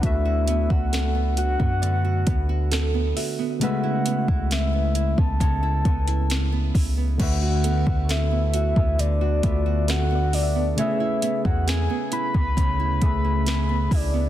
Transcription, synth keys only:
\new Staff \with { instrumentName = "Synth keys" } { \time 4/4 \key d \lydian \tempo 4 = 67 <a d' fis' b' e''>1 | <cis gis a b' e''>1 | <d a fis' b' e''>2~ <d a fis' b' e''>8 <d a f' fis' b' e''>4. | <cis a gis' b' e''>2~ <cis a gis' b' e''>8 <cis a gis' b' e''>4. | }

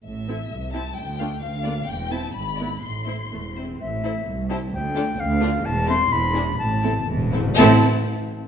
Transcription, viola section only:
\new Staff \with { instrumentName = "Viola section" } { \time 2/4 \key a \minor \tempo 4 = 128 r8 <c' e'>8 r8 <c' e'>8 | r8 <a d'>8 r8 <bes d'>8 | r8 <c' e'>8 r8 <b e'>8 | r8 <a e'>8 a8 c'8 |
r8 e'8 r8 e'8 | r8 d'8 r8 d'8 | r8 c'8 r8 d'8 | r8 c'8 r8 c'8 |
c'8 r4. | }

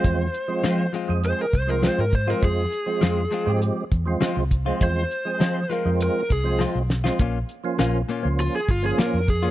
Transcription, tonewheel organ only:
\new Staff \with { instrumentName = "Tonewheel organ" } { \time 4/4 \key f \minor \tempo 4 = 101 <f aes c' f'>8 r16 <f aes c' f'>8. r16 <f aes c' aes'>8. r16 <f aes c' f'>8. r16 <f aes c' f'>16~ | <f aes c' f'>8 r16 <f aes c' f'>8. r16 <f aes c' g'>8. r16 <f aes c' f'>8. r16 <f aes c' f'>16~ | <f aes c' f'>8 r16 <f aes c' aes'>8. r16 <f aes c' f'>8. r16 <f aes c' f'>8. r16 <f aes c' f'>16 | r8. <f bes des' f'>8. r16 <f bes des' f'>8. r16 <f bes des' f'>8. r16 <f bes des' f'>16 | }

